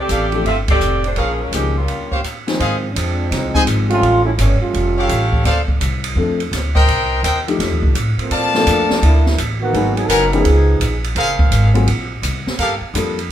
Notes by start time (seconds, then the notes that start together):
0.00 C4 G4 A4 D5
0.09 A1 G4 A4 D5 F5, kick, hi-hat pedal, ride
0.32 F3 A3 D4 G4, ride
0.44 G1 C4 F4 A4 E5, kick, ride
0.68 C4 G4 A4 D5, kick, ride
0.80 F1, hi-hat pedal
1.04 A3 D4 G4 C5, ride
1.16 A#1 F3 A#3 C#4 G#4 A#4 C#5 F5, kick, ride
1.40 G#3 C#4 F4 A#4
1.51 C#2 D#3 F3 G#3 A#3 C4 C#4 G4 G#4, kick, hi-hat pedal, ride
1.77 G3 A#3 C#4 F4
1.88 kick, ride
2.12 G4 C5 C#5 F5, kick
2.24 kick, hi-hat pedal, ride
2.47 D#3 F3 G#3 C4 D#4 G#4, snare, ride
2.59 G#2 G#4 C5 D#5 F5, kick, ride
2.92 F2 F3 G#3 C#4
2.96 C4 D4, kick, hi-hat pedal, ride
3.30 C2 F3 G#3 C4 D#4, kick, snare, ride
3.54 F3 G#3 C4 D#4 G#4 C5 D#5 G#5, muted upright bass stroke, kick
3.67 G#1, hi-hat pedal, ride
3.89 G3 A3 C#4 F4, ride
4.02 A1, kick, ride
4.24 G3 A3 C#4 E4
4.37 G1 E3 G3 A3 C#4, kick, hi-hat pedal, ride
4.61 G3 A3 C#4 F4, muted upright bass stroke
4.73 F1, kick, ride
4.97 G4 A4 C#5 F5
5.09 A1, kick, hi-hat pedal, ride
5.33 kick
5.44 D2 A4 C5 D5 F5, kick, snare, ride
5.68 kick
5.80 C2, hi-hat pedal, ride
6.04 ride
6.15 F2 F3 A3 C4 D4 A4, kick
6.40 ride
6.51 D2, kick, snare, hi-hat pedal, ride
6.75 A#4 C5 D#5 G5, kick
6.87 C2, kick, ride
7.23 D#2 A#4 C5 D#5 G5, kick, hi-hat pedal, ride
7.48 F3 A3 D4 D#4 G4, ride
7.59 F2, kick, snare, ride
7.70 D#2
7.82 C2, kick
7.94 A2, hi-hat pedal, ride
8.18 F3 A3 A#3 C4, muted upright bass stroke, ride
8.31 A#2 D5 F5 A5, kick, ride
8.54 F3 A3 A#3 D4 A4, snare
8.65 F2 F3 A3 A#3 D4, kick, hi-hat pedal, ride
8.90 muted upright bass stroke, snare
9.02 D2 A3 A#3 D4 E4, kick, ride
9.26 snare
9.37 A1, kick, hi-hat pedal, ride
9.60 D#3 A#3 B3 F#4
9.73 G#1 F#3 A#3 B3 D#4 G#4, kick, ride
9.95 F#3 B3 D#4 G#4, ride
10.07 F#1 F#3 B3 D#4 A#4 B4 F#5 G#5, kick, hi-hat pedal, ride
10.32 F3 B3 C#4 D#4 G#4 A#4, ride
10.44 C#2, kick, ride
10.80 A#1, kick, hi-hat pedal, ride
11.04 ride
11.15 F#1 G#4 A#4 C5 F5, kick, ride
11.39 kick
11.51 G#1, kick, hi-hat pedal, ride
11.74 F#3 A#3 C4 F4 G#4, ride
11.87 A#1, kick, ride
12.22 C2, kick, hi-hat pedal, ride
12.46 muted upright bass stroke, snare
12.58 G2 G4 A4 A#4 F5, kick, ride
12.81 muted upright bass stroke
12.94 F2 G3 A#3 D4 F4 A4, kick, hi-hat pedal, ride
13.19 ride